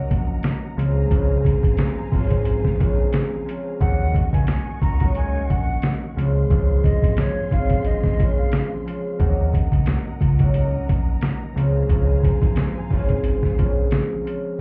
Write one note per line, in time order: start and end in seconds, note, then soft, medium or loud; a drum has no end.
0.00 0.82 F#3 loud
0.00 2.97 A#3 medium
0.00 0.77 C#4 medium
0.00 2.47 D#4 medium
0.00 0.82 F#4 loud
0.00 0.75 A#4 medium
0.00 0.75 D#5 medium
0.00 0.75 F#5 medium
0.00 3.77 A#5 medium
0.11 0.39 A#1 medium
0.11 kick loud
0.11 closed hi-hat medium
0.43 snare loud
0.43 closed hi-hat loud
0.76 1.06 C#2 loud
0.76 1.09 F3 loud
0.76 1.09 G#3 medium
0.76 0.99 C4 medium
0.76 0.99 C#4 medium
0.76 0.99 F4 loud
0.76 3.77 C5 medium
0.76 3.78 F5 medium
0.76 3.78 G#5 medium
0.76 closed hi-hat medium
1.10 1.55 C#2 loud
1.10 2.11 F3 loud
1.10 2.11 G#3 medium
1.10 2.13 C4 medium
1.10 2.13 C#4 medium
1.10 2.14 F4 loud
1.10 kick loud
1.10 closed hi-hat medium
1.45 kick loud
1.45 closed hi-hat medium
1.63 1.76 G#1 medium
1.63 kick medium
1.63 closed hi-hat medium
1.77 snare loud
1.77 closed hi-hat loud
2.12 2.69 G#1 medium
2.12 2.77 F3 loud
2.12 2.78 G#3 medium
2.12 2.61 C4 medium
2.12 2.61 C#4 medium
2.12 2.61 F4 loud
2.12 kick loud
2.12 open hi-hat medium
2.30 kick medium
2.30 closed hi-hat soft
2.45 closed hi-hat medium
2.64 kick medium
2.64 snare soft
2.78 3.24 A#1 medium
2.78 3.44 F3 medium
2.78 3.44 G#3 medium
2.78 3.42 C4 medium
2.78 3.42 C#4 medium
2.78 3.43 F4 loud
2.78 kick loud
2.78 closed hi-hat medium
3.13 snare loud
3.13 closed hi-hat loud
3.45 3.86 F3 medium
3.45 3.86 G#3 medium
3.45 3.78 C4 medium
3.45 3.78 C#4 medium
3.45 3.78 F4 medium
3.45 closed hi-hat medium
3.80 4.25 D#2 loud
3.80 4.99 F#3 medium
3.80 5.00 A#3 medium
3.80 5.00 C#4 medium
3.80 5.01 D#4 medium
3.80 5.01 F#4 loud
3.80 6.16 A#4 medium
3.80 6.16 D#5 medium
3.80 4.30 F#5 loud
3.80 6.16 F#5 medium
3.80 6.16 C#6 medium
3.80 kick loud
3.80 closed hi-hat medium
4.14 kick loud
4.14 closed hi-hat medium
4.33 4.46 C#2 medium
4.33 4.79 G#5 medium
4.33 kick medium
4.33 closed hi-hat medium
4.47 snare loud
4.47 closed hi-hat loud
4.82 5.38 C#2 loud
4.82 5.12 A#5 medium
4.82 kick loud
4.82 closed hi-hat medium
5.00 5.14 F#3 medium
5.00 5.14 A#3 medium
5.00 5.15 C#4 medium
5.00 5.15 D#4 medium
5.00 5.16 F#4 loud
5.00 kick medium
5.00 closed hi-hat soft
5.15 6.22 F#3 loud
5.15 8.37 A#3 medium
5.15 6.17 C#4 medium
5.15 7.87 D#4 medium
5.15 6.22 F#4 loud
5.15 5.46 G#5 medium
5.15 closed hi-hat medium
5.49 5.78 A#1 medium
5.49 5.99 F#5 medium
5.49 kick loud
5.49 closed hi-hat medium
5.82 snare loud
5.82 closed hi-hat loud
6.16 6.45 C#2 loud
6.16 6.49 F3 loud
6.16 6.49 G#3 medium
6.16 6.38 C4 medium
6.16 6.38 C#4 medium
6.16 6.39 F4 loud
6.16 9.17 G#4 medium
6.16 9.17 F5 medium
6.16 9.17 C6 loud
6.16 closed hi-hat medium
6.50 6.95 C#2 loud
6.50 7.50 F3 loud
6.50 7.51 G#3 medium
6.50 7.52 C4 medium
6.50 7.53 C#4 medium
6.50 7.53 F4 loud
6.50 kick loud
6.50 closed hi-hat medium
6.84 7.14 D#5 medium
6.84 kick loud
6.84 closed hi-hat medium
7.03 7.15 G#1 medium
7.03 kick medium
7.03 closed hi-hat medium
7.17 7.48 C#5 medium
7.17 snare loud
7.17 closed hi-hat loud
7.51 8.08 G#1 medium
7.51 8.17 F3 loud
7.51 8.17 G#3 medium
7.51 8.00 C4 medium
7.51 8.00 C#4 medium
7.51 8.01 F4 loud
7.51 7.82 F5 medium
7.51 kick loud
7.51 closed hi-hat medium
7.69 kick medium
7.69 closed hi-hat medium
7.85 8.35 D#5 medium
7.85 closed hi-hat medium
8.04 kick medium
8.04 snare soft
8.18 8.64 A#1 medium
8.18 8.83 F3 loud
8.18 8.83 G#3 medium
8.18 8.81 C4 medium
8.18 8.82 C#4 medium
8.18 8.82 F4 loud
8.18 kick loud
8.18 closed hi-hat medium
8.38 8.68 F5 medium
8.52 snare loud
8.52 closed hi-hat loud
8.84 9.25 F3 medium
8.84 9.25 G#3 medium
8.84 9.17 C4 medium
8.84 9.17 C#4 medium
8.84 9.18 F4 medium
8.84 closed hi-hat medium
9.19 9.64 D#2 loud
9.19 10.38 F#3 medium
9.19 10.39 A#3 medium
9.19 10.39 C#4 medium
9.19 10.40 D#4 medium
9.19 10.40 F#4 loud
9.19 11.53 A#4 medium
9.19 11.53 D#5 medium
9.19 11.53 F#5 medium
9.19 14.55 A#5 medium
9.19 kick loud
9.19 closed hi-hat medium
9.54 kick loud
9.54 closed hi-hat medium
9.72 9.85 C#2 medium
9.72 kick medium
9.72 closed hi-hat medium
9.86 snare loud
9.86 closed hi-hat loud
10.21 10.78 C#2 medium
10.21 kick loud
10.21 closed hi-hat medium
10.39 10.53 F#3 medium
10.39 10.54 A#3 medium
10.39 10.54 C#4 medium
10.39 10.54 D#4 medium
10.39 10.55 F#4 loud
10.39 kick medium
10.39 closed hi-hat medium
10.54 11.61 F#3 loud
10.54 13.76 A#3 medium
10.54 11.56 C#4 medium
10.54 13.26 D#4 medium
10.54 11.61 F#4 loud
10.54 closed hi-hat medium
10.89 11.17 A#1 medium
10.89 kick loud
10.89 closed hi-hat medium
11.21 snare loud
11.21 closed hi-hat loud
11.55 11.84 C#2 loud
11.55 11.88 F3 loud
11.55 11.88 G#3 medium
11.55 11.78 C4 medium
11.55 11.78 C#4 medium
11.55 11.78 F4 loud
11.55 14.56 C5 medium
11.55 14.56 F5 medium
11.55 14.56 G#5 medium
11.55 closed hi-hat medium
11.89 12.34 C#2 loud
11.89 12.90 F3 loud
11.89 12.90 G#3 medium
11.89 12.92 C4 medium
11.89 12.92 C#4 medium
11.89 12.93 F4 loud
11.89 kick loud
11.89 closed hi-hat medium
12.23 kick loud
12.23 closed hi-hat medium
12.42 12.55 G#1 medium
12.42 kick medium
12.42 closed hi-hat medium
12.56 snare loud
12.56 closed hi-hat loud
12.90 13.47 G#1 medium
12.90 13.56 F3 loud
12.90 13.56 G#3 medium
12.90 13.40 C4 medium
12.90 13.40 C#4 medium
12.90 13.40 F4 loud
12.90 kick loud
12.90 open hi-hat medium
13.09 kick medium
13.09 closed hi-hat medium
13.24 closed hi-hat medium
13.43 kick medium
13.43 snare soft
13.57 14.03 A#1 medium
13.57 14.22 F3 loud
13.57 14.23 G#3 medium
13.57 14.21 C4 medium
13.57 14.21 C#4 medium
13.57 14.21 F4 loud
13.57 kick loud
13.57 closed hi-hat medium
13.91 snare loud
13.91 closed hi-hat loud
14.23 14.61 F3 medium
14.23 14.61 G#3 medium
14.23 14.56 C4 medium
14.23 14.57 C#4 medium
14.23 14.57 F4 medium
14.23 closed hi-hat medium